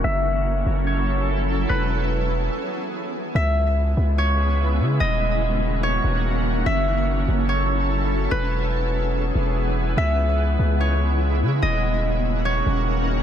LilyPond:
<<
  \new Staff \with { instrumentName = "Harp" } { \time 4/4 \key cis \minor \tempo 4 = 145 e''4 r4 cis''2 | b'4 r2. | e''4 r4 cis''2 | dis''4 r4 cis''2 |
e''4 r4 cis''2 | b'4 r2. | e''4 r4 cis''2 | dis''4 r4 cis''2 | }
  \new Staff \with { instrumentName = "Ambient pad" } { \time 4/4 \key cis \minor << { <fis e' a'>1 | r1 | <cis b e'>1 | <dis cis' fis'>1 |
<fis e' a'>1 | <e gis'>1 | <cis e'>1 | <dis cis' fis'>1 | } \\ { cis'1~ | cis'2 r2 | gis1 | ais1 |
r1 | b1 | gis1 | ais1 | } >> }
  \new Staff \with { instrumentName = "808-style bass" } { \clef bass \time 4/4 \key cis \minor fis,,4. fis,,2~ fis,,8 | e,,2 r2 | cis,4. cis,2 cis8 | dis,,2~ dis,,8 dis,,4. |
fis,,4. fis,,2~ fis,,8 | e,,2~ e,,8 e,,4. | cis,4. cis,2 cis8 | dis,,2~ dis,,8 dis,,4. | }
>>